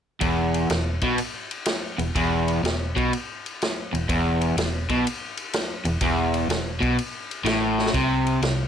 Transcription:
0.21 fingered electric bass E1, overdriven electric guitar E2, kick, ride
0.54 ride
0.70 fingered electric bass E1, overdriven electric guitar E2, snare, ride
1.01 fingered electric bass B1, overdriven electric guitar B2, kick, ride
1.18 ride
1.51 ride
1.65 snare, ride
1.98 fingered electric bass E1, overdriven electric guitar E2, ride
2.15 fingered electric bass E1, overdriven electric guitar E2, kick, ride
2.48 ride
2.63 fingered electric bass E1, overdriven electric guitar E2, snare, ride
2.96 fingered electric bass B1, overdriven electric guitar B2, kick, ride
3.13 ride
3.46 ride
3.62 snare, ride
3.93 fingered electric bass E1, overdriven electric guitar E2, ride
4.09 fingered electric bass E1, overdriven electric guitar E2, kick, ride
4.41 ride
4.56 fingered electric bass E1, overdriven electric guitar E2, snare, ride
4.89 fingered electric bass B1, overdriven electric guitar B2, kick, ride
5.07 ride
5.37 ride
5.53 snare, ride
5.84 fingered electric bass E1, overdriven electric guitar E2, ride
6.01 fingered electric bass E1, overdriven electric guitar E2, kick, ride
6.34 ride
6.49 fingered electric bass E1, overdriven electric guitar E2, snare, ride
6.81 fingered electric bass B1, overdriven electric guitar B2, kick, ride
6.99 ride
7.31 ride
7.44 fingered electric bass A1, overdriven electric guitar A2, snare, ride
7.79 snare
7.86 snare
7.94 fingered electric bass C2, overdriven electric guitar C3, kick, ride
8.27 ride
8.42 fingered electric bass C2, overdriven electric guitar C3, snare, ride

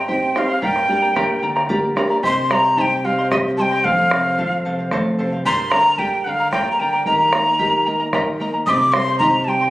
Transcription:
Already playing: nylon-string guitar G2
0.08 nylon-string guitar C4 D#4 G4, charango G4 C5 D#5 G5 C6, quena G5, bombo rim, bombo low
0.35 nylon-string guitar C4 D#4 G4, charango C5 D#5 G5 C6, quena F5, bombo rim
0.48 charango C5 D#5 C6
0.62 nylon-string guitar G2, charango G4 A#4 D5 G5 A#5, quena G5, bombo low
0.76 bombo rim
0.88 nylon-string guitar A#3 D4 G4, charango A#4 D5 G5 A#5
1.02 charango A#4 D5 A#5
1.15 nylon-string guitar A#3 D4 G4, charango G4 A#4 D5 G5 A#5, bombo rim, bombo low
1.42 nylon-string guitar D3, charango A#4 D5 G5 A#5
1.56 charango A#4 D5 A#5, bombo rim
1.69 nylon-string guitar A#3 D4 G4 A#4, charango G4 A#4 D5 G5 A#5, bombo low
1.96 nylon-string guitar A#3 D4 G4, charango A#4 D5 G5 A#5, bombo rim
2.10 charango A#4 D5 A#5
2.22 nylon-string guitar C3, charango G4 C5 D#5 G5 C6, quena C6, bombo rim, bombo low
2.50 nylon-string guitar G3, charango C5 D#5 G5 C6, quena A#5, bombo rim
2.64 charango C5 D#5 C6
2.77 nylon-string guitar D#4, charango G4 C5 D#5 G5 C6, quena A5, bombo rim, bombo low
2.81 quena G5
3.04 nylon-string guitar G3, charango C5 D#5 G5 C6, quena F5
3.18 charango C5 D#5 C6, bombo rim
3.31 charango G4 C5 D#5 G5 C6, nylon-string guitar G4, quena D#5, bombo rim, bombo low
3.45 bombo rim
3.57 nylon-string guitar G3, charango C5 D#5 G5 C6, quena A5
3.61 quena G5
3.71 charango C5 D#5 C6
3.84 nylon-string guitar F2, charango A4 C5 F5, quena F5, bombo rim, bombo low
4.11 nylon-string guitar C3, charango A4 C5 F5, bombo rim
4.25 charango C5 F5
4.38 nylon-string guitar F3, charango A4 C5 F5, bombo rim, bombo low
4.65 nylon-string guitar C3, charango A4 C5 F5
4.79 charango C5 F5, bombo rim
4.91 nylon-string guitar A3, charango A4 C5 F5, bombo rim, bombo low
5.06 bombo rim
5.19 nylon-string guitar C3, charango A4 C5 F5
5.32 charango C5 F5
5.45 nylon-string guitar G2, charango G4 A#4 D5 G5 A#5, quena C6, bombo rim, bombo low
5.71 nylon-string guitar D3, charango A#4 D5 G5 A#5, quena A#5, bombo rim
5.85 charango A#4 D5 A#5
5.98 nylon-string guitar G3, charango G4 A#4 D5 G5 A#5, quena G5, bombo rim, bombo low
6.24 nylon-string guitar D3, charango A#4 D5 G5 A#5, quena F#5
6.29 quena F5
6.39 charango A#4 D5 A#5, bombo rim
6.52 nylon-string guitar A#3, charango G4 A#4 D5 G5 A#5, quena G5, bombo rim, bombo low
6.66 bombo rim
6.71 quena A#5
6.79 nylon-string guitar D3, charango A#4 D5 G5 A#5, quena G5
6.93 charango A#4 D5 A#5
7.06 nylon-string guitar D#3, charango G4 A#4 D#5 G5 A#5, quena A#5, bombo rim, bombo low
7.32 nylon-string guitar A#3, charango A#4 D#5 G5 A#5, bombo rim
7.45 charango A#4 D#5 A#5, bombo rim
7.59 charango G4 A#4 D#5 G5 A#5, nylon-string guitar G4, bombo low
7.86 nylon-string guitar A#3, charango A#4 D#5 G5 A#5
8.00 charango A#4 D#5 A#5, bombo rim
8.13 charango G4 A#4 D#5 G5 A#5, nylon-string guitar A#4, bombo rim, bombo low
8.27 bombo rim
8.40 nylon-string guitar A#3, charango A#4 D#5 G5 A#5
8.54 charango A#4 D#5 A#5
8.66 nylon-string guitar C3, charango G4 C5 D#5 G5 C6, quena D6 D#6, bombo rim, bombo low
8.93 nylon-string guitar G3, charango C5 D#5 G5 C6, quena C6, bombo rim
9.08 charango C5 D#5 C6
9.19 nylon-string guitar D#4, charango G4 C5 D#5 G5 C6, quena A#5, bombo rim, bombo low
9.45 nylon-string guitar G3, charango G5, quena G5 A5
9.49 charango C5 D#5 C6
9.61 charango C5 D#5 C6, bombo rim

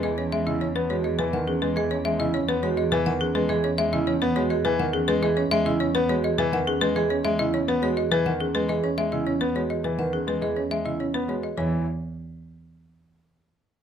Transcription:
Already playing: cello E2
0.03 grand piano E3, vibraphone G#4, marimba D#5
0.18 vibraphone C#4, marimba C#5
0.32 grand piano G#3, marimba E5
0.47 grand piano C#3, vibraphone E4, marimba D#5
0.61 vibraphone C#4, marimba C#5
0.75 grand piano B3, marimba B4
0.90 grand piano G#3, vibraphone F#4, marimba C#5
1.04 vibraphone G#4, marimba D#5
1.19 grand piano E3, marimba B4
1.33 grand piano D#3, vibraphone B4, marimba F#5
1.47 vibraphone C#4, marimba G#4
1.62 grand piano G#3, marimba B4
1.76 grand piano E3, vibraphone G#4, marimba D#5
1.91 vibraphone C#4, marimba C#5
2.05 grand piano G#3, marimba E5
2.20 grand piano C#3, vibraphone E4, marimba D#5
2.34 vibraphone C#4, marimba C#5
2.48 grand piano B3, marimba B4
2.63 grand piano G#3, vibraphone F#4, marimba C#5
2.77 vibraphone G#4, marimba D#5
2.92 grand piano E3, marimba B4
3.06 grand piano D#3, vibraphone B4, marimba F#5
3.21 vibraphone C#4, marimba G#4
3.35 grand piano G#3, marimba B4
3.49 grand piano E3, vibraphone G#4, marimba D#5
3.64 vibraphone C#4, marimba C#5
3.78 grand piano G#3, marimba E5
3.93 grand piano C#3, vibraphone E4, marimba D#5
4.07 vibraphone C#4, marimba C#5
4.22 grand piano B3, marimba B4
4.36 grand piano G#3, vibraphone F#4, marimba C#5
4.50 vibraphone G#4, marimba D#5
4.65 grand piano E3, marimba B4
4.79 grand piano D#3, vibraphone B4, marimba F#5
4.93 vibraphone C#4, marimba G#4
5.08 grand piano G#3, marimba B4
5.22 grand piano E3, vibraphone G#4, marimba D#5
5.37 vibraphone C#4, marimba C#5
5.51 grand piano G#3, marimba E5
5.65 grand piano C#3, vibraphone E4, marimba D#5
5.80 vibraphone C#4, marimba C#5
5.95 grand piano B3, marimba B4
6.09 grand piano G#3, vibraphone F#4, marimba C#5
6.24 vibraphone G#4, marimba D#5
6.38 grand piano E3, marimba B4
6.52 grand piano D#3, vibraphone B4, marimba F#5
6.67 vibraphone C#4, marimba G#4
6.81 grand piano G#3, marimba B4
6.96 grand piano E3, vibraphone G#4, marimba D#5
7.10 vibraphone C#4, marimba C#5
7.25 grand piano G#3, marimba E5
7.39 grand piano C#3, vibraphone E4, marimba D#5
7.54 vibraphone C#4, marimba C#5
7.68 grand piano B3, marimba B4
7.82 grand piano G#3, vibraphone F#4, marimba C#5
7.97 vibraphone G#4, marimba D#5
8.11 grand piano E3, marimba B4
8.26 grand piano D#3, vibraphone B4, marimba F#5
8.40 vibraphone C#4, marimba G#4
8.55 grand piano G#3, marimba B4
8.69 grand piano E3, vibraphone G#4, marimba D#5
8.83 vibraphone C#4, marimba C#5
8.98 grand piano G#3, marimba E5
9.12 grand piano C#3, vibraphone E4, marimba D#5
9.27 vibraphone C#4, marimba C#5
9.41 grand piano B3, marimba B4
9.55 grand piano G#3, vibraphone F#4, marimba C#5
9.70 vibraphone G#4, marimba D#5
9.84 grand piano E3, marimba B4
9.98 grand piano D#3, vibraphone B4, marimba F#5
10.13 vibraphone C#4, marimba G#4
10.27 grand piano G#3, marimba B4
10.42 grand piano E3, vibraphone G#4, marimba D#5
10.56 vibraphone C#4, marimba C#5
10.71 grand piano G#3, marimba E5
10.85 grand piano C#3, vibraphone E4, marimba D#5
11.00 vibraphone C#4, marimba C#5
11.14 grand piano B3, marimba B4
11.28 grand piano G#3, vibraphone F#4, marimba C#5
11.43 vibraphone G#4, marimba D#5
11.57 cello E2, grand piano E3, vibraphone E4, marimba C#5

